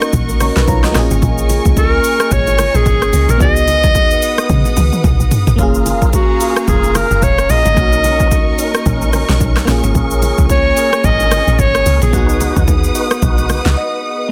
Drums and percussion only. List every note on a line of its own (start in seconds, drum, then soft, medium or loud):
0.02 cross-stick loud
0.02 shaker medium
0.13 kick loud
0.13 low conga medium
0.13 shaker medium
0.29 high bongo medium
0.29 shaker soft
0.40 cross-stick medium
0.40 open hi-hat medium
0.40 low bongo medium
0.40 shaker medium
0.56 snare medium
0.56 shaker soft
0.68 kick medium
0.68 high bongo medium
0.68 low conga medium
0.68 shaker medium
0.84 cross-stick medium
0.84 snare medium
0.84 shaker soft
0.95 cross-stick medium
0.95 snare medium
0.95 open hi-hat soft
0.95 shaker medium
1.11 low bongo medium
1.11 shaker medium
1.22 kick loud
1.22 low conga medium
1.22 shaker medium
1.38 shaker medium
1.49 open hi-hat soft
1.49 low bongo medium
1.49 shaker medium
1.65 kick loud
1.65 shaker medium
1.77 kick medium
1.77 high bongo medium
1.77 shaker medium
2.04 open hi-hat medium
2.04 shaker loud
2.20 cross-stick loud
2.20 shaker medium
2.31 kick loud
2.31 low conga medium
2.31 shaker medium
2.47 high bongo medium
2.47 shaker medium
2.59 cross-stick loud
2.59 open hi-hat medium
2.59 low bongo medium
2.59 shaker medium
2.75 shaker soft
2.86 kick medium
2.86 high bongo medium
2.86 low conga medium
2.86 shaker medium
3.02 cross-stick medium
3.02 shaker soft
3.13 open hi-hat soft
3.13 shaker medium
3.29 low bongo medium
3.29 shaker medium
3.40 kick loud
3.40 low conga medium
3.40 shaker medium
3.56 shaker medium
3.68 open hi-hat soft
3.68 low bongo medium
3.68 shaker medium
3.83 kick loud
3.83 low bongo medium
3.83 shaker medium
3.95 kick medium
3.95 high bongo medium
3.95 shaker medium
4.11 shaker medium
4.22 open hi-hat medium
4.22 shaker medium
4.38 cross-stick loud
4.38 shaker medium
4.49 kick loud
4.49 high tom medium
4.49 low conga medium
4.49 shaker medium
4.65 high bongo medium
4.65 shaker medium
4.77 open hi-hat medium
4.77 mid tom medium
4.77 low bongo medium
4.77 shaker medium
4.93 mid tom medium
4.93 shaker soft
5.04 kick medium
5.04 mid tom medium
5.04 high bongo medium
5.04 low conga medium
5.04 shaker medium
5.20 shaker soft
5.31 floor tom loud
5.31 open hi-hat soft
5.31 high bongo medium
5.31 shaker medium
5.47 floor tom loud
5.47 low bongo medium
5.47 shaker medium
5.59 kick loud
5.59 low conga medium
5.59 shaker medium
5.74 shaker medium
5.86 open hi-hat soft
5.86 low bongo medium
5.86 shaker medium
6.02 kick loud
6.02 shaker medium
6.13 kick medium
6.13 high bongo medium
6.13 shaker medium
6.41 open hi-hat medium
6.41 shaker medium
6.56 cross-stick loud
6.56 shaker medium
6.68 kick loud
6.68 low conga medium
6.68 shaker medium
6.84 high bongo medium
6.84 shaker soft
6.95 cross-stick loud
6.95 open hi-hat medium
6.95 low bongo medium
6.95 shaker medium
7.11 shaker soft
7.22 kick medium
7.22 high bongo medium
7.22 low conga medium
7.22 shaker medium
7.38 cross-stick medium
7.38 shaker medium
7.50 open hi-hat medium
7.50 shaker medium
7.65 low bongo medium
7.65 shaker medium
7.77 kick loud
7.77 low conga medium
7.77 shaker medium
7.93 shaker medium
8.04 open hi-hat soft
8.04 low bongo medium
8.04 shaker medium
8.20 kick loud
8.20 shaker medium
8.31 kick loud
8.31 high bongo medium
8.31 shaker medium
8.59 open hi-hat medium
8.59 shaker medium
8.75 cross-stick loud
8.75 shaker medium
8.86 kick loud
8.86 low conga medium
8.86 shaker medium
9.02 high bongo medium
9.02 shaker medium
9.13 cross-stick medium
9.13 open hi-hat medium
9.13 low bongo medium
9.13 shaker medium
9.29 snare medium
9.29 shaker soft
9.40 kick medium
9.40 high bongo medium
9.40 low conga medium
9.40 shaker medium
9.56 cross-stick loud
9.56 snare medium
9.56 shaker medium
9.68 cross-stick medium
9.68 snare medium
9.68 open hi-hat soft
9.68 shaker medium
9.84 low bongo medium
9.84 shaker medium
9.95 kick loud
9.95 low conga medium
9.95 shaker medium
10.11 shaker medium
10.22 open hi-hat soft
10.22 low bongo medium
10.22 shaker medium
10.38 kick loud
10.38 shaker medium
10.49 kick medium
10.49 high bongo medium
10.49 shaker medium
10.77 open hi-hat medium
10.77 shaker medium
10.93 cross-stick loud
10.93 shaker medium
11.04 kick loud
11.04 low conga medium
11.04 shaker medium
11.20 high bongo medium
11.20 shaker medium
11.31 cross-stick loud
11.31 open hi-hat medium
11.31 low bongo medium
11.31 shaker medium
11.47 shaker soft
11.59 kick medium
11.59 high bongo medium
11.59 low conga medium
11.59 shaker medium
11.75 cross-stick loud
11.75 shaker soft
11.86 open hi-hat medium
11.86 shaker medium
12.02 low bongo medium
12.02 shaker medium
12.13 kick loud
12.13 low conga medium
12.13 shaker medium
12.29 shaker medium
12.40 open hi-hat soft
12.40 low bongo medium
12.40 shaker medium
12.56 kick loud
12.56 shaker medium
12.68 kick medium
12.68 high bongo medium
12.68 shaker medium
12.84 shaker medium
12.95 open hi-hat medium
12.95 shaker medium
13.11 cross-stick loud
13.11 shaker medium
13.22 kick loud
13.22 low conga medium
13.22 shaker medium
13.38 high bongo medium
13.38 shaker medium
13.49 cross-stick loud
13.49 open hi-hat medium
13.49 low bongo medium
13.49 shaker medium
13.66 snare medium
13.66 shaker soft